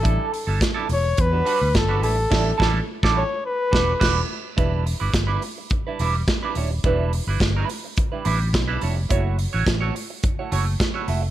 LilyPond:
<<
  \new Staff \with { instrumentName = "Flugelhorn" } { \time 4/4 \key e \dorian \tempo 4 = 106 a'4 r8 cis''8 b'4 a'8 a'8~ | a'4 r8 cis''8 b'4. r8 | r1 | r1 |
r1 | }
  \new Staff \with { instrumentName = "Clean electric guitar" } { \time 4/4 \key e \dorian <g d' e' a'>8 r16 <g d' e' a'>16 r16 <g d' e' a'>8 r8 <g d' fis' b'>16 <g d' fis' b'>8 r16 <g d' fis' b'>16 <g d' e' b'>16 r16 | <g d' e' a'>8 <g d' e' a'>8 r16 <g d' e' a'>8 r8. <g d' fis' b'>8 <g d' fis' b'>8 r8 | <g d' e' b'>8 r16 <g d' e' b'>16 r16 <g d' e' b'>8 r8 <g d' e' b'>16 <g d' e' b'>8 r16 <g d' e' b'>16 <g d' e' cis''>16 r16 | <g d' e' b'>8 r16 <g d' e' b'>16 r16 <g d' e' b'>8 r8 <g d' e' b'>16 <g d' e' b'>8 r16 <g d' e' b'>16 <g d' e' cis''>16 r16 |
<a e' fis' cis''>8 r16 <a e' fis' cis''>16 r16 <a e' fis' cis''>8 r8 <a e' fis' cis''>16 <a e' fis' cis''>8 r16 <a e' fis' cis''>16 <a e' fis' e''>16 r16 | }
  \new Staff \with { instrumentName = "Fingered electric bass" } { \clef bass \time 4/4 \key e \dorian a,,16 r8 g,,16 r8 e,,8 e,8 r16 d,16 g,,8 a,,8 | a,,8 a,,8 r16 a,,8 r8. e,,8 e,,8 r8 | e,,8. g,,16 g,,8 r4 e,,8 r8 dis,,8 | e,,8. g,,16 g,,8 r4 a,,8 b,,8 f,,8 |
fis,,8. a,,16 a,,8 r4 fis,,8 r8 f,,8 | }
  \new DrumStaff \with { instrumentName = "Drums" } \drummode { \time 4/4 <hh bd>8 hho8 <hh bd sn>8 hho8 <hh bd>8 hho8 <hh bd sn>8 hho8 | <cymc bd sn>8 <bd sn>8 r16 <bd sn>8. r8 <bd sn>8 <cymc bd sn>4 | <hh bd>8 hho8 <hh bd sn>8 hho8 <hh bd>8 hho8 <hh bd sn>8 hho8 | <hh bd>8 hho8 <hh bd sn>8 hho8 <hh bd>8 hho8 <hh bd sn>8 hho8 |
<hh bd>8 hho8 <hh bd sn>8 hho8 <hh bd>8 hho8 <hh bd sn>8 hho8 | }
>>